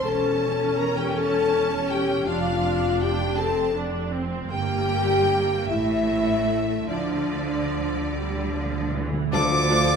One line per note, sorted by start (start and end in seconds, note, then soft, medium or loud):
0.04 2.24 E1 medium
0.04 2.24 E2 medium
0.04 2.24 C#4 medium
0.04 0.77 A4 medium
0.04 0.79 A5 medium
0.78 0.97 A#4 medium
0.78 0.97 A#5 medium
0.78 0.98 A#5 medium
0.97 1.16 G4 medium
0.97 1.16 G5 medium
1.15 1.73 A4 medium
1.15 1.90 A5 medium
1.15 1.91 A5 medium
1.90 2.27 G4 medium
1.90 2.28 G5 medium
2.27 4.47 F1 medium
2.27 4.47 F2 medium
2.27 3.39 D4 medium
2.27 3.02 F4 medium
2.27 3.00 F5 medium
3.01 3.39 G4 medium
3.01 3.38 G5 medium
3.37 3.75 C4 medium
3.37 3.76 A4 medium
3.37 3.75 A5 medium
3.74 4.12 D4 medium
4.11 4.50 C4 medium
4.50 5.66 G1 medium
4.50 5.66 G2 medium
4.50 5.69 A#3 medium
4.50 5.66 G4 loud
4.50 5.66 G5 medium
5.69 6.90 A1 medium
5.69 6.90 A2 medium
5.69 6.90 A3 medium
5.69 6.90 E4 medium
5.69 6.90 E5 medium
6.89 9.08 D2 medium
6.89 6.98 D3 soft
6.89 9.09 D3 medium
6.89 8.03 F3 medium
6.89 8.90 D4 medium
6.89 8.89 D5 medium
6.89 8.90 D5 medium
6.99 7.05 D3 soft
7.07 7.13 D3 soft
7.15 7.21 D3 soft
7.23 7.29 D3 soft
7.39 7.46 D3 soft
7.47 7.53 D3 soft
7.54 7.61 D3 soft
7.62 7.70 D3 soft
7.71 7.77 D3 soft
7.79 7.86 D3 soft
7.87 7.93 D3 soft
7.94 8.01 D3 soft
8.02 8.09 D3 soft
8.10 8.17 D3 soft
8.10 8.51 G3 medium
8.19 8.25 D3 medium
8.26 8.33 D3 medium
8.34 8.41 D3 medium
8.42 8.49 D3 medium
8.50 8.56 D3 medium
8.54 8.65 D3 medium
8.54 8.94 F3 medium
8.66 8.73 D3 medium
8.74 8.80 D3 medium
8.81 8.89 D3 medium
8.90 8.96 D3 medium
8.94 9.04 D3 medium
8.94 9.32 E3 medium
9.05 9.11 D3 medium
9.13 9.19 D3 medium
9.20 9.27 D3 medium
9.31 9.96 D2 medium
9.31 9.96 D3 loud
9.31 9.96 F3 medium
9.31 9.40 A3 medium
9.31 9.40 D4 medium
9.31 9.96 F4 medium
9.31 9.41 F4 medium
9.31 9.96 A4 medium
9.31 9.41 A4 medium
9.31 9.96 D5 medium
9.31 9.96 D6 loud
9.69 9.77 A3 medium
9.69 9.77 D4 medium
9.69 9.78 F4 medium
9.69 9.78 A4 medium